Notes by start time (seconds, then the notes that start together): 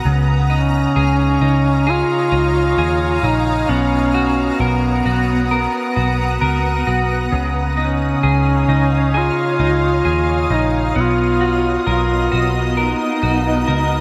Already playing: F#4 A#4 A#5 D#6
0.05 C#2 C#3 C#5 F5
0.50 D#4
0.54 C#4
0.96 C#2 G#4
1.41 C#2 D#4
1.87 F4 G#4
2.32 C#2 D#4
2.78 D#2 G#4
3.23 A#1 D#4
3.69 B1 B3 C#4 F#5 D#6
4.14 F#4
4.60 B1 B3 A#4
5.06 B1 F#4
5.51 A#4
5.96 B1 F#4
6.41 C#2 A#4
6.87 B1 F#4
7.32 C#2 C#3 C#5 F5 D#6
7.77 C#4 D#4
8.23 C#2 G#4
8.69 C#2 D#4
9.14 F4 G#4
9.60 C#2 D#4
10.05 D#2 G#4
10.50 A#1 D#4
10.96 B1 B3 D#5
11.00 F4
11.41 F#4
11.87 B1 F4 A#4
12.32 B1 F#4
12.77 D#4 A#4
13.23 B1 F#4
13.68 C#2 A#4